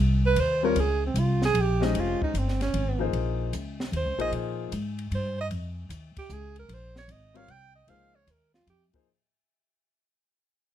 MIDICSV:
0, 0, Header, 1, 6, 480
1, 0, Start_track
1, 0, Tempo, 395517
1, 925, Time_signature, 3, 2, 24, 8
1, 13040, End_track
2, 0, Start_track
2, 0, Title_t, "Alto saxophone"
2, 0, Program_c, 0, 65
2, 318, Note_on_c, 0, 71, 94
2, 481, Note_on_c, 0, 72, 97
2, 500, Note_off_c, 0, 71, 0
2, 775, Note_off_c, 0, 72, 0
2, 782, Note_on_c, 0, 70, 90
2, 976, Note_on_c, 0, 68, 81
2, 995, Note_off_c, 0, 70, 0
2, 1270, Note_off_c, 0, 68, 0
2, 1289, Note_on_c, 0, 60, 62
2, 1450, Note_on_c, 0, 65, 72
2, 1468, Note_off_c, 0, 60, 0
2, 1747, Note_off_c, 0, 65, 0
2, 1761, Note_on_c, 0, 68, 100
2, 1957, Note_on_c, 0, 67, 85
2, 1975, Note_off_c, 0, 68, 0
2, 2242, Note_on_c, 0, 63, 82
2, 2260, Note_off_c, 0, 67, 0
2, 2429, Note_on_c, 0, 65, 99
2, 2447, Note_off_c, 0, 63, 0
2, 2708, Note_off_c, 0, 65, 0
2, 2715, Note_on_c, 0, 63, 76
2, 2892, Note_on_c, 0, 60, 66
2, 2910, Note_off_c, 0, 63, 0
2, 3178, Note_off_c, 0, 60, 0
2, 3186, Note_on_c, 0, 61, 81
2, 3771, Note_off_c, 0, 61, 0
2, 4814, Note_on_c, 0, 72, 83
2, 5088, Note_off_c, 0, 72, 0
2, 5112, Note_on_c, 0, 75, 105
2, 5248, Note_off_c, 0, 75, 0
2, 6249, Note_on_c, 0, 72, 83
2, 6526, Note_off_c, 0, 72, 0
2, 6564, Note_on_c, 0, 75, 98
2, 6648, Note_off_c, 0, 75, 0
2, 7509, Note_on_c, 0, 67, 86
2, 7685, Note_on_c, 0, 68, 89
2, 7703, Note_off_c, 0, 67, 0
2, 7985, Note_off_c, 0, 68, 0
2, 8002, Note_on_c, 0, 70, 87
2, 8177, Note_on_c, 0, 72, 91
2, 8195, Note_off_c, 0, 70, 0
2, 8470, Note_off_c, 0, 72, 0
2, 8476, Note_on_c, 0, 73, 85
2, 8639, Note_on_c, 0, 75, 83
2, 8657, Note_off_c, 0, 73, 0
2, 8937, Note_on_c, 0, 77, 103
2, 8955, Note_off_c, 0, 75, 0
2, 9115, Note_on_c, 0, 79, 116
2, 9134, Note_off_c, 0, 77, 0
2, 9401, Note_off_c, 0, 79, 0
2, 9408, Note_on_c, 0, 75, 93
2, 9578, Note_on_c, 0, 77, 93
2, 9596, Note_off_c, 0, 75, 0
2, 9894, Note_on_c, 0, 73, 80
2, 9913, Note_off_c, 0, 77, 0
2, 10081, Note_on_c, 0, 70, 75
2, 10099, Note_off_c, 0, 73, 0
2, 10362, Note_off_c, 0, 70, 0
2, 10370, Note_on_c, 0, 65, 88
2, 10516, Note_off_c, 0, 65, 0
2, 10556, Note_on_c, 0, 67, 81
2, 10738, Note_off_c, 0, 67, 0
2, 13040, End_track
3, 0, Start_track
3, 0, Title_t, "Grand piano"
3, 0, Program_c, 1, 0
3, 764, Note_on_c, 1, 55, 76
3, 769, Note_on_c, 1, 60, 68
3, 776, Note_on_c, 1, 65, 77
3, 783, Note_on_c, 1, 70, 74
3, 785, Note_on_c, 1, 73, 80
3, 908, Note_off_c, 1, 55, 0
3, 911, Note_off_c, 1, 60, 0
3, 914, Note_off_c, 1, 65, 0
3, 917, Note_off_c, 1, 70, 0
3, 919, Note_off_c, 1, 73, 0
3, 2189, Note_on_c, 1, 56, 73
3, 2195, Note_on_c, 1, 61, 66
3, 2202, Note_on_c, 1, 67, 61
3, 2205, Note_on_c, 1, 72, 62
3, 2209, Note_on_c, 1, 75, 83
3, 2805, Note_off_c, 1, 56, 0
3, 2808, Note_off_c, 1, 61, 0
3, 2811, Note_off_c, 1, 67, 0
3, 2813, Note_off_c, 1, 72, 0
3, 2815, Note_off_c, 1, 75, 0
3, 3627, Note_on_c, 1, 53, 67
3, 3633, Note_on_c, 1, 58, 67
3, 3643, Note_on_c, 1, 63, 67
3, 3645, Note_on_c, 1, 68, 63
3, 3649, Note_on_c, 1, 72, 79
3, 4244, Note_off_c, 1, 53, 0
3, 4247, Note_off_c, 1, 58, 0
3, 4252, Note_off_c, 1, 63, 0
3, 4252, Note_off_c, 1, 68, 0
3, 4255, Note_off_c, 1, 72, 0
3, 5078, Note_on_c, 1, 58, 68
3, 5080, Note_on_c, 1, 53, 79
3, 5089, Note_on_c, 1, 63, 72
3, 5095, Note_on_c, 1, 68, 77
3, 5099, Note_on_c, 1, 72, 84
3, 5689, Note_off_c, 1, 58, 0
3, 5690, Note_off_c, 1, 53, 0
3, 5694, Note_off_c, 1, 63, 0
3, 5698, Note_off_c, 1, 68, 0
3, 5700, Note_off_c, 1, 72, 0
3, 8910, Note_on_c, 1, 60, 68
3, 8912, Note_on_c, 1, 55, 69
3, 8916, Note_on_c, 1, 65, 69
3, 8929, Note_on_c, 1, 70, 61
3, 8937, Note_on_c, 1, 73, 80
3, 9061, Note_off_c, 1, 60, 0
3, 9062, Note_off_c, 1, 55, 0
3, 9064, Note_off_c, 1, 65, 0
3, 9071, Note_off_c, 1, 70, 0
3, 9074, Note_off_c, 1, 73, 0
3, 9564, Note_on_c, 1, 53, 56
3, 9567, Note_on_c, 1, 58, 51
3, 9570, Note_on_c, 1, 63, 52
3, 9582, Note_on_c, 1, 72, 66
3, 9583, Note_on_c, 1, 68, 53
3, 9852, Note_off_c, 1, 53, 0
3, 9854, Note_off_c, 1, 58, 0
3, 9855, Note_off_c, 1, 63, 0
3, 9861, Note_off_c, 1, 68, 0
3, 9861, Note_off_c, 1, 72, 0
3, 10841, Note_on_c, 1, 53, 64
3, 10847, Note_on_c, 1, 58, 57
3, 10861, Note_on_c, 1, 63, 60
3, 10861, Note_on_c, 1, 68, 68
3, 10866, Note_on_c, 1, 72, 75
3, 10987, Note_off_c, 1, 53, 0
3, 10990, Note_off_c, 1, 58, 0
3, 10997, Note_off_c, 1, 63, 0
3, 10997, Note_off_c, 1, 68, 0
3, 11000, Note_off_c, 1, 72, 0
3, 13040, End_track
4, 0, Start_track
4, 0, Title_t, "Upright bass"
4, 0, Program_c, 2, 32
4, 0, Note_on_c, 2, 36, 79
4, 424, Note_off_c, 2, 36, 0
4, 436, Note_on_c, 2, 39, 86
4, 901, Note_off_c, 2, 39, 0
4, 909, Note_on_c, 2, 37, 81
4, 1379, Note_off_c, 2, 37, 0
4, 1386, Note_on_c, 2, 36, 78
4, 1860, Note_off_c, 2, 36, 0
4, 1871, Note_on_c, 2, 34, 91
4, 2343, Note_off_c, 2, 34, 0
4, 2355, Note_on_c, 2, 29, 70
4, 2656, Note_off_c, 2, 29, 0
4, 2836, Note_on_c, 2, 31, 82
4, 3306, Note_off_c, 2, 31, 0
4, 3322, Note_on_c, 2, 32, 88
4, 3788, Note_off_c, 2, 32, 0
4, 3798, Note_on_c, 2, 34, 78
4, 4267, Note_off_c, 2, 34, 0
4, 4285, Note_on_c, 2, 37, 73
4, 4750, Note_off_c, 2, 37, 0
4, 4758, Note_on_c, 2, 39, 86
4, 4918, Note_off_c, 2, 39, 0
4, 4918, Note_on_c, 2, 37, 50
4, 5068, Note_off_c, 2, 37, 0
4, 5075, Note_on_c, 2, 34, 52
4, 5228, Note_off_c, 2, 34, 0
4, 5239, Note_on_c, 2, 46, 73
4, 5707, Note_off_c, 2, 46, 0
4, 5723, Note_on_c, 2, 44, 85
4, 6189, Note_off_c, 2, 44, 0
4, 6203, Note_on_c, 2, 43, 87
4, 6669, Note_off_c, 2, 43, 0
4, 6683, Note_on_c, 2, 41, 76
4, 7141, Note_off_c, 2, 41, 0
4, 7149, Note_on_c, 2, 39, 88
4, 7453, Note_off_c, 2, 39, 0
4, 7637, Note_on_c, 2, 37, 79
4, 8106, Note_off_c, 2, 37, 0
4, 8113, Note_on_c, 2, 34, 78
4, 8584, Note_off_c, 2, 34, 0
4, 8591, Note_on_c, 2, 32, 89
4, 9063, Note_off_c, 2, 32, 0
4, 9068, Note_on_c, 2, 36, 93
4, 9542, Note_off_c, 2, 36, 0
4, 9553, Note_on_c, 2, 37, 81
4, 10024, Note_off_c, 2, 37, 0
4, 10030, Note_on_c, 2, 39, 79
4, 10503, Note_off_c, 2, 39, 0
4, 10513, Note_on_c, 2, 41, 85
4, 10816, Note_off_c, 2, 41, 0
4, 13040, End_track
5, 0, Start_track
5, 0, Title_t, "Muted upright bass strokes"
5, 2685, Note_on_c, 9, 29, 40
5, 2807, Note_off_c, 9, 29, 0
5, 7482, Note_on_c, 9, 29, 34
5, 7604, Note_off_c, 9, 29, 0
5, 13040, End_track
6, 0, Start_track
6, 0, Title_t, "Drums"
6, 440, Note_on_c, 9, 51, 58
6, 561, Note_off_c, 9, 51, 0
6, 919, Note_on_c, 9, 51, 58
6, 1041, Note_off_c, 9, 51, 0
6, 1403, Note_on_c, 9, 44, 48
6, 1403, Note_on_c, 9, 51, 58
6, 1524, Note_off_c, 9, 44, 0
6, 1524, Note_off_c, 9, 51, 0
6, 1721, Note_on_c, 9, 38, 51
6, 1843, Note_off_c, 9, 38, 0
6, 1878, Note_on_c, 9, 51, 63
6, 1999, Note_off_c, 9, 51, 0
6, 2207, Note_on_c, 9, 38, 54
6, 2328, Note_off_c, 9, 38, 0
6, 2364, Note_on_c, 9, 51, 64
6, 2486, Note_off_c, 9, 51, 0
6, 2691, Note_on_c, 9, 36, 55
6, 2813, Note_off_c, 9, 36, 0
6, 2848, Note_on_c, 9, 44, 53
6, 2848, Note_on_c, 9, 51, 54
6, 2970, Note_off_c, 9, 44, 0
6, 2970, Note_off_c, 9, 51, 0
6, 3013, Note_on_c, 9, 38, 30
6, 3135, Note_off_c, 9, 38, 0
6, 3165, Note_on_c, 9, 51, 43
6, 3171, Note_on_c, 9, 38, 40
6, 3287, Note_off_c, 9, 51, 0
6, 3292, Note_off_c, 9, 38, 0
6, 3323, Note_on_c, 9, 51, 59
6, 3444, Note_off_c, 9, 51, 0
6, 3802, Note_on_c, 9, 51, 51
6, 3924, Note_off_c, 9, 51, 0
6, 4285, Note_on_c, 9, 44, 54
6, 4285, Note_on_c, 9, 51, 55
6, 4407, Note_off_c, 9, 44, 0
6, 4407, Note_off_c, 9, 51, 0
6, 4614, Note_on_c, 9, 38, 59
6, 4735, Note_off_c, 9, 38, 0
6, 4771, Note_on_c, 9, 51, 60
6, 4893, Note_off_c, 9, 51, 0
6, 5091, Note_on_c, 9, 51, 45
6, 5212, Note_off_c, 9, 51, 0
6, 5249, Note_on_c, 9, 51, 52
6, 5370, Note_off_c, 9, 51, 0
6, 5729, Note_on_c, 9, 44, 51
6, 5729, Note_on_c, 9, 51, 65
6, 5850, Note_off_c, 9, 44, 0
6, 5850, Note_off_c, 9, 51, 0
6, 6050, Note_on_c, 9, 51, 42
6, 6172, Note_off_c, 9, 51, 0
6, 6209, Note_on_c, 9, 51, 56
6, 6330, Note_off_c, 9, 51, 0
6, 6683, Note_on_c, 9, 51, 60
6, 6804, Note_off_c, 9, 51, 0
6, 7164, Note_on_c, 9, 44, 47
6, 7164, Note_on_c, 9, 51, 60
6, 7285, Note_off_c, 9, 44, 0
6, 7285, Note_off_c, 9, 51, 0
6, 7482, Note_on_c, 9, 51, 64
6, 7486, Note_on_c, 9, 36, 50
6, 7604, Note_off_c, 9, 51, 0
6, 7607, Note_off_c, 9, 36, 0
6, 7640, Note_on_c, 9, 44, 68
6, 7761, Note_off_c, 9, 44, 0
6, 7958, Note_on_c, 9, 51, 39
6, 8080, Note_off_c, 9, 51, 0
6, 8122, Note_on_c, 9, 51, 57
6, 8243, Note_off_c, 9, 51, 0
6, 8444, Note_on_c, 9, 38, 49
6, 8565, Note_off_c, 9, 38, 0
6, 8600, Note_on_c, 9, 44, 44
6, 8600, Note_on_c, 9, 51, 65
6, 8722, Note_off_c, 9, 44, 0
6, 8722, Note_off_c, 9, 51, 0
6, 8924, Note_on_c, 9, 51, 44
6, 9045, Note_off_c, 9, 51, 0
6, 9080, Note_on_c, 9, 51, 53
6, 9202, Note_off_c, 9, 51, 0
6, 9561, Note_on_c, 9, 51, 60
6, 9682, Note_off_c, 9, 51, 0
6, 10041, Note_on_c, 9, 44, 58
6, 10041, Note_on_c, 9, 51, 62
6, 10163, Note_off_c, 9, 44, 0
6, 10163, Note_off_c, 9, 51, 0
6, 10366, Note_on_c, 9, 38, 46
6, 10488, Note_off_c, 9, 38, 0
6, 10526, Note_on_c, 9, 44, 55
6, 10526, Note_on_c, 9, 51, 64
6, 10647, Note_off_c, 9, 44, 0
6, 10647, Note_off_c, 9, 51, 0
6, 10843, Note_on_c, 9, 51, 41
6, 10850, Note_on_c, 9, 36, 60
6, 10964, Note_off_c, 9, 51, 0
6, 10972, Note_off_c, 9, 36, 0
6, 13040, End_track
0, 0, End_of_file